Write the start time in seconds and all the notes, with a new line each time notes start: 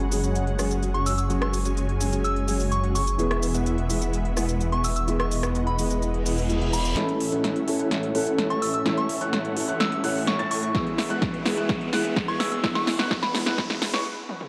Already playing: F#1 F#3 G#3 C#4 F#4 G#4 C#5 F#5 G#5
0.00 closed hi-hat
0.11 F#3 G#3 C#4 G#4, open hi-hat, cabasa
0.23 G#3 C#4 F#4 C#5 G#5, closed hi-hat, cabasa
0.35 closed hi-hat, cabasa
0.47 closed hi-hat
0.58 F#3 G#3 C#4 F#4 G#4 C#5 G#5, cross-stick, open hi-hat, cabasa
0.71 closed hi-hat, cabasa
0.83 closed hi-hat, cabasa
0.94 G#3 C#4 F#4 C#5 F#5 C#6, closed hi-hat
1.06 E6, open hi-hat, cabasa
1.18 E6, closed hi-hat, cabasa
1.29 F#3 G#3 C#4 F#4 G#4 C#5 F#5 G#5, closed hi-hat, cabasa
1.42 C#6, cross-stick, closed hi-hat
1.54 open hi-hat, cabasa
1.65 G#3 C#4 F#4 C#5 G#5, closed hi-hat, cabasa
1.77 closed hi-hat, cabasa
1.89 closed hi-hat
2.00 F#3 G#3 C#4 G#4, open hi-hat, cabasa
2.13 G#3 C#4 F#4 C#5 G#5, closed hi-hat, cabasa
2.24 E6, closed hi-hat, cabasa
2.36 closed hi-hat
2.47 F#3 G#3 C#4 F#4 C#5 G#5, open hi-hat, cabasa
2.60 open hi-hat, cabasa
2.72 C#6, closed hi-hat, cabasa
2.83 G#3 C#4 F#4 C#5 F#5, closed hi-hat
2.95 C#6, open hi-hat, cabasa
3.07 closed hi-hat, cabasa
3.18 E1 E3 G#3 B3 E4 G#4 B4 E5, closed hi-hat, cabasa
3.31 cross-stick, closed hi-hat
3.43 open hi-hat, cabasa
3.54 G#3 B3 E4 B4 F#5, closed hi-hat, cabasa
3.66 closed hi-hat, cabasa
3.78 closed hi-hat
3.89 E3 G#3 B3 G#4, open hi-hat, cabasa
4.01 G#3 B3 E4 B4 F#5, closed hi-hat, cabasa
4.13 closed hi-hat, cabasa
4.25 closed hi-hat
4.36 E3 G#3 B3 E4 G#4 B4 F#5, cross-stick, open hi-hat, cabasa
4.49 closed hi-hat, cabasa
4.61 closed hi-hat, cabasa
4.72 G#3 B3 E4 B4 G#5 C#6, closed hi-hat
4.84 E6, open hi-hat, cabasa
4.96 E6, closed hi-hat, cabasa
5.07 E3 G#3 B3 E4 G#4 B4 D#5 E5, closed hi-hat, cabasa
5.20 C#6, cross-stick, closed hi-hat
5.31 open hi-hat, cabasa
5.43 G#3 B3 E4 B4 F#5, cross-stick, closed hi-hat, cabasa
5.55 closed hi-hat, cabasa
5.67 B5, closed hi-hat
5.78 E3 G#3 B3 G#4, open hi-hat, cabasa
5.90 G#3 B3 E4 B4 F#5, closed hi-hat, cabasa
6.02 closed hi-hat, reverse cymbal, cabasa
6.14 closed hi-hat
6.26 G#3 B3 E4 B4 F#5, open hi-hat, cabasa
6.38 open hi-hat, cabasa
6.49 E3 G#3 B3 G#4, closed hi-hat, cabasa
6.61 E3 G#3 B3 E4 G#4 B4 G#5, closed hi-hat
6.73 B5, open hi-hat, cabasa
6.85 closed hi-hat, cabasa
6.96 A1 E3 A3 C#4 E4 A4 C#5 E5 E6, snare, closed hi-hat, riser
7.09 closed hi-hat
7.20 open hi-hat
7.32 A1 A3 C#4 E4 C#5 F#5 F#6, closed hi-hat
7.44 snare, closed hi-hat
7.56 closed hi-hat
7.67 E3 A3 C#4 A4, open hi-hat
7.79 A1 A3 C#4 E4 C#5 F#5 F#6, closed hi-hat
7.91 snare, closed hi-hat
8.03 closed hi-hat
8.14 A1 E3 A3 C#4 E4 A4 C#5 F#5 F#6, open hi-hat
8.27 closed hi-hat
8.38 snare, closed hi-hat
8.50 A1 A3 C#4 E4 C#5 A5 C#6 A6, closed hi-hat
8.62 E6, open hi-hat
8.74 E6, closed hi-hat
8.85 A1 E3 A3 C#4 E4 A4 C#5 E5 E6, snare, closed hi-hat
8.97 C#6, closed hi-hat
9.09 open hi-hat
9.21 A1 A3 C#4 E4 C#5 F#5 F#6, closed hi-hat
9.33 snare, closed hi-hat
9.45 closed hi-hat
9.56 E3 A3 C#4 A4, open hi-hat
9.68 A1 A3 C#4 E4 C#5 F#5 F#6, closed hi-hat
9.80 E6, snare, closed hi-hat
9.92 closed hi-hat
10.03 A1 E3 A3 C#4 E4 C#5 F#5 F#6, open hi-hat
10.16 open hi-hat
10.27 C#6, snare, closed hi-hat
10.39 A2 A3 C#4 E4 C#5 A5 A6, closed hi-hat
10.51 C#6, open hi-hat
10.63 closed hi-hat
10.73 E1 E3 G#3 B3 E4 G#4 B4 E5 E6, kick, snare, closed hi-hat
10.87 closed hi-hat
10.98 snare, open hi-hat
11.10 E1 G#3 B3 E4 B4 F#5 F#6, closed hi-hat
11.22 kick, snare, closed hi-hat
11.34 closed hi-hat
11.45 E3 G#3 B3 G#4, snare, open hi-hat
11.57 E1 G#3 B3 E4 B4 F#5 F#6, closed hi-hat
11.69 kick, snare, closed hi-hat
11.81 closed hi-hat
11.92 E1 E3 G#3 B3 E4 G#4 B4 F#5 F#6, snare, open hi-hat
12.05 closed hi-hat
12.16 kick, snare, closed hi-hat
12.28 E1 G#3 B3 E4 B4 G#5 C#6 G#6, closed hi-hat
12.40 E6, snare, open hi-hat
12.52 E6, closed hi-hat
12.62 E1 E3 G#3 B3 E4 G#4 B4 E5 F#5 E6, kick, snare, closed hi-hat
12.75 C#6, snare, closed hi-hat
12.87 snare, open hi-hat
12.99 E1 G#3 B3 E4 B4 F#5 F#6, snare, closed hi-hat
13.11 kick, snare, closed hi-hat
13.22 B5, snare, closed hi-hat
13.34 E3 G#3 B3 G#4, snare, open hi-hat
13.46 E1 G#3 B3 E4 B4 F#5 F#6, snare, closed hi-hat
13.58 kick, snare, closed hi-hat
13.70 snare, closed hi-hat
13.82 snare, open hi-hat
13.94 E1 G#3 B3 E4 B4 C#5 C#6, snare
14.29 high tom
14.41 mid tom